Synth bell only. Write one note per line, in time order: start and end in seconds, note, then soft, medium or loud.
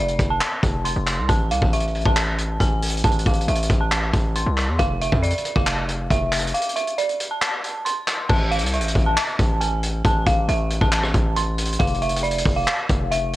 0.00 0.29 D5 medium
0.30 0.82 A5 medium
0.85 1.26 C6 medium
1.29 1.49 A5 loud
1.51 1.71 F5 medium
1.73 2.04 E5 medium
2.06 2.57 A5 medium
2.60 3.01 G#5 medium
3.04 3.24 A5 medium
3.26 3.46 F5 medium
3.48 3.79 E5 medium
3.80 4.32 A5 medium
4.36 4.77 C6 medium
4.79 4.99 F5 loud
5.01 5.21 E5 medium
5.22 5.54 D5 medium
5.56 6.07 F5 medium
6.11 6.52 E5 medium
6.54 6.75 F5 medium
6.76 6.96 E5 medium
6.98 7.29 D5 medium
7.31 7.82 A5 medium
7.85 8.27 C6 medium
8.29 8.50 A5 loud
8.51 8.72 F5 medium
8.74 9.04 E5 medium
9.06 9.58 A5 medium
9.61 10.02 G#5 medium
10.05 10.25 A5 medium
10.27 10.47 F5 medium
10.49 10.80 E5 medium
10.81 11.33 A5 medium
11.36 11.77 C6 medium
11.79 12.00 F5 loud
12.02 12.22 E5 medium
12.23 12.54 D5 medium
12.56 13.08 F5 medium
13.11 13.36 E5 medium